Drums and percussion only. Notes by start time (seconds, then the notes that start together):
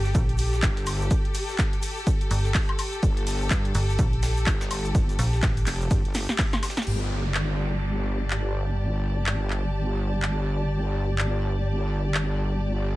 0.05 snare, shaker
0.14 kick, closed hi-hat, ride, shaker
0.29 closed hi-hat
0.38 open hi-hat, ride, shaker
0.53 snare, closed hi-hat, shaker
0.62 kick, snare, clap, closed hi-hat, ride, shaker
0.77 closed hi-hat
0.86 open hi-hat, ride, high woodblock, shaker
1.01 closed hi-hat, shaker
1.10 kick, closed hi-hat, ride, shaker
1.25 closed hi-hat
1.34 snare, open hi-hat, ride, shaker
1.48 snare, shaker
1.58 kick, snare, clap, closed hi-hat, ride, shaker
1.73 closed hi-hat
1.82 open hi-hat, ride, shaker
1.97 shaker
2.07 kick, closed hi-hat, ride, shaker
2.21 closed hi-hat
2.31 open hi-hat, ride, shaker
2.45 snare, closed hi-hat, shaker
2.54 kick, snare, clap, open hi-hat, ride, shaker
2.69 closed hi-hat, high woodblock
2.79 open hi-hat, ride, high woodblock, shaker
2.93 shaker
3.03 kick, closed hi-hat, ride, shaker
3.17 closed hi-hat
3.27 snare, open hi-hat, ride, shaker
3.41 shaker
3.51 kick, snare, clap, closed hi-hat, ride, shaker
3.65 closed hi-hat
3.75 snare, open hi-hat, ride, shaker
3.89 snare, shaker
3.98 kick, closed hi-hat, ride, shaker
4.13 closed hi-hat
4.23 snare, open hi-hat, ride, shaker
4.37 closed hi-hat, shaker
4.46 kick, clap, closed hi-hat, ride, shaker
4.61 snare, closed hi-hat, shaker
4.71 open hi-hat, ride, high woodblock, shaker
4.85 closed hi-hat, shaker
4.95 kick, closed hi-hat, ride, shaker
5.09 closed hi-hat, shaker
5.19 snare, open hi-hat, ride, shaker
5.33 snare, closed hi-hat, shaker
5.42 kick, snare, clap, closed hi-hat, ride, shaker
5.57 closed hi-hat, shaker
5.66 clap, open hi-hat, ride, shaker
5.81 closed hi-hat, shaker
5.91 kick, closed hi-hat, ride, shaker
6.05 closed hi-hat
6.14 snare, open hi-hat, ride, shaker
6.29 snare, closed hi-hat, shaker
6.39 kick, snare, clap, open hi-hat, ride, shaker
6.53 snare, closed hi-hat, high woodblock, shaker
6.63 snare, open hi-hat, ride, high woodblock, shaker
6.70 snare, shaker
6.77 snare, shaker
6.82 snare, shaker
6.87 crash
7.34 clap
8.30 clap
9.26 clap
9.50 clap
10.22 clap
11.18 clap
12.14 clap